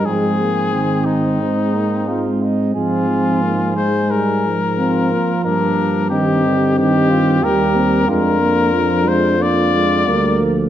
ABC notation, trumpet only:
X:1
M:4/4
L:1/8
Q:1/4=90
K:Bbmix
V:1 name="Trumpet"
A3 E4 z | F3 c B4 | B2 G2 G2 B2 | B3 c d3 z |]